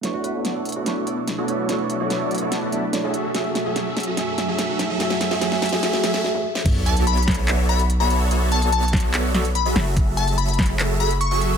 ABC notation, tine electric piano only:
X:1
M:4/4
L:1/8
Q:1/4=145
K:Bdor
V:1 name="Tine electric piano"
[A,DEc']4 [A,DEc']3 [A,DEc] | [A,DEc']4- [A,DEc'] [A,DEd] [A,DEc] z | [A,Feg]4 [A,Feg]4 | [A,Feg]2 [A,Feg]2 [A,FGe] [A,FGe] z2 |
z8 | z8 | z8 |]